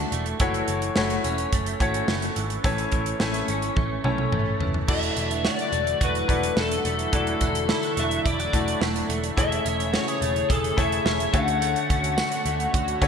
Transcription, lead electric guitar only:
4.90 5.47 E5 loud
5.47 6.04 D5 loud
6.04 6.60 B4 medium
6.60 7.15 A4 medium
7.16 8.01 A4 medium
7.99 8.26 E5 medium
8.27 8.78 D5 medium
9.39 9.94 E5 loud
9.95 10.52 C#5 loud
10.50 10.79 A4 medium
10.78 11.36 E5 loud
11.33 13.08 F#5 medium

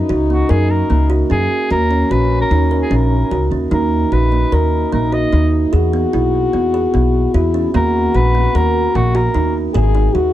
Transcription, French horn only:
0.00 1.40 D#4 medium
1.70 3.48 C#4 medium
3.71 5.74 D#4 medium
5.73 7.36 F#4 medium
7.34 7.73 E4 medium
7.74 9.44 F#4 medium
9.74 10.16 G#4 loud
10.14 10.33 F#4 medium

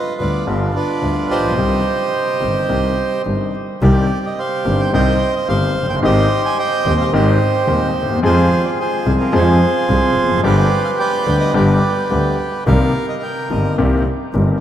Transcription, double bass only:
0.20 0.43 D2 medium
0.47 0.70 G1 medium
1.02 1.25 D2 medium
1.30 1.57 A#1 medium
1.57 1.80 C2 medium
2.41 2.64 G1 medium
2.69 2.92 C2 medium
3.26 3.49 G1 medium
3.82 4.05 C2 loud
4.66 4.89 G1 medium
4.93 5.16 C2 medium
5.49 5.71 G1 medium
5.76 6.02 F#1 medium
6.03 6.26 G#1 loud
6.86 7.08 D#2 medium
7.12 7.36 G#1 loud
7.68 7.91 D#2 medium
7.96 8.23 D#2 medium
8.23 8.46 F2 loud
9.06 9.29 C2 medium
9.33 9.56 F2 loud
9.89 10.12 C2 medium
10.16 10.43 F1 medium
10.44 10.67 G1 loud
11.27 11.50 D2 medium
11.54 11.78 G1 medium
12.11 12.34 D2 medium
12.67 12.90 C2 loud
13.50 13.74 G1 medium
13.78 14.02 C2 loud
14.34 14.57 G1 medium

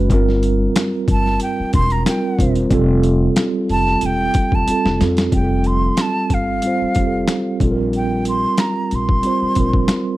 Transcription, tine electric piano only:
0.00 0.12 G#3 medium
0.00 0.12 C#4 medium
0.00 0.13 F#4 medium
0.00 0.12 B4 medium
0.09 1.21 G3 medium
0.09 1.21 C4 medium
0.09 1.22 F4 medium
0.14 1.23 A#4 loud
2.05 2.33 G3 medium
2.05 2.34 C4 medium
2.05 2.35 F4 medium
2.05 2.35 A#4 medium
2.37 2.66 G3 medium
2.37 2.67 C4 medium
2.37 2.67 F4 medium
2.42 2.68 C5 medium
2.70 3.82 G3 loud
2.70 3.82 C4 medium
2.70 3.83 F4 medium
2.74 3.84 A4 loud
4.67 4.95 G3 medium
4.67 4.95 C4 medium
4.67 4.96 F4 medium
4.71 4.97 A4 medium
4.99 5.27 G3 medium
4.99 5.28 C4 medium
4.99 5.29 F4 medium
5.03 5.29 A4 medium
5.32 6.43 G3 medium
5.32 6.44 C4 medium
5.32 6.45 F4 medium
5.37 5.41 G#4 medium
5.43 6.49 A4 medium
6.63 6.91 G3 medium
6.63 6.91 C4 medium
6.63 6.92 F4 medium
6.67 6.93 C5 medium
6.96 7.59 G3 medium
6.96 7.61 C4 medium
6.96 7.62 F4 medium
7.01 7.05 G4 soft
7.07 7.64 A4 medium
7.61 8.72 G3 medium
7.61 8.72 C4 medium
7.61 8.73 F4 medium
7.65 7.70 A4 medium
7.71 8.77 A#4 medium
9.22 9.51 G3 medium
9.22 9.51 C4 medium
9.22 9.52 F4 medium
9.27 9.53 C5 medium
9.56 10.17 G3 medium
9.56 10.17 C4 medium
9.56 10.17 F4 medium
9.60 10.17 A#4 medium

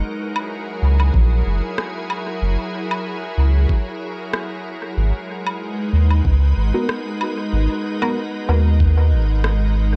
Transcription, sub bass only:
0.82 1.11 C#2 medium
1.14 1.43 A#1 medium
1.46 1.61 F#1 medium
2.42 2.57 F#1 medium
3.37 3.66 C#2 medium
4.97 5.12 G#1 medium
5.93 6.21 D#2 medium
6.25 6.53 C#2 medium
6.57 6.72 G#1 medium
7.53 7.68 G#1 medium
8.49 9.14 D#2 medium
9.12 9.96 G#1 medium

